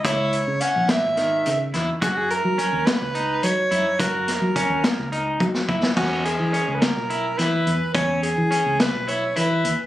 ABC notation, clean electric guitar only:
X:1
M:7/8
L:1/8
Q:1/4=106
K:Elyd
V:1 name="Clean electric guitar"
E2 C2 D,2 E | F2 C2 D2 E | F2 C2 D2 E | C2 C2 E E2 |
C2 C2 E E2 |]